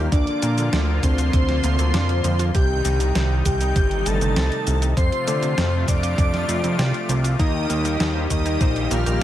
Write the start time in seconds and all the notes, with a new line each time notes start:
Already playing: A#3
0.12 D2 D3 F3 D4 F4 D5, kick, closed hi-hat, shaker
0.27 closed hi-hat
0.42 A#2 A#3, closed hi-hat, shaker
0.58 D3, closed hi-hat, shaker
0.73 D2 D4, snare, closed hi-hat, shaker
1.03 D2 D3 C4 C5, kick, closed hi-hat, shaker
1.18 F4, closed hi-hat, shaker
1.33 D2 D3, kick, closed hi-hat, shaker
1.49 snare, closed hi-hat
1.64 D2 A#3, closed hi-hat, shaker
1.79 D2 D3, closed hi-hat, shaker
1.94 F2 D4, snare, closed hi-hat, shaker
2.09 closed hi-hat
2.24 F2 D3, closed hi-hat, shaker
2.39 F4, closed hi-hat, shaker
2.54 C2 C3 D#3 G3 D#4 G4 G5, kick, closed hi-hat, shaker
2.85 C2 G3, closed hi-hat, shaker
3.00 C3, closed hi-hat, shaker
3.15 C2 C4, snare, closed hi-hat, shaker
3.45 C2 C3 G4 G5, kick, closed hi-hat, shaker
3.61 D#4, closed hi-hat, shaker
3.76 G1 C3, kick, closed hi-hat, shaker
3.91 closed hi-hat
4.06 G1 G3 A4 A5, closed hi-hat, shaker
4.21 G1 C3, closed hi-hat, shaker
4.36 C2 C4, snare, closed hi-hat, shaker
4.52 closed hi-hat
4.67 C2 C3, closed hi-hat, shaker
4.82 D#4, closed hi-hat, shaker
4.97 F2 C3 F3 A3 F4 C5 C6, kick, closed hi-hat, shaker
5.12 closed hi-hat
5.27 D3 A3, closed hi-hat, shaker
5.43 C3, closed hi-hat, shaker
5.58 F2 C4, snare, closed hi-hat, shaker
5.88 F2 C3 D5 D6, kick, closed hi-hat, shaker
6.03 F4, closed hi-hat, shaker
6.18 F2 C3, kick, closed hi-hat, shaker
6.34 snare, closed hi-hat
6.48 F2 A3, closed hi-hat, shaker
6.64 F2 C3, closed hi-hat, shaker
6.79 C2 C4, snare, closed hi-hat, shaker
6.94 closed hi-hat
7.09 C2 C3, closed hi-hat, shaker
7.24 F4, closed hi-hat, shaker
7.39 D#2 D#3 G3 A#3 D#4 G4 A#4 D#5, kick, closed hi-hat, shaker
7.70 D#2 D#3 A#3 D#4 G4 A#4, closed hi-hat, shaker
7.85 D#3 A#3 D#4 G4 A#4, closed hi-hat, shaker
8.00 D#2 D#4, snare, closed hi-hat, shaker
8.15 D#3 A#3 D#4 G4 C5
8.30 D#2 D#3 D#4 D#5, kick, closed hi-hat, shaker
8.46 D#3 A#3 D#4 G4 A#4, closed hi-hat, shaker
8.61 A#1 D#3 A#3 D#4 G4 C5, kick, closed hi-hat, shaker
8.76 closed hi-hat
8.91 A#1 D#3 A#3 D#4 F4 G4 A#4 F5, closed hi-hat, shaker
9.06 A#1 D#3 A#3 D#4 G4 A#4, closed hi-hat, shaker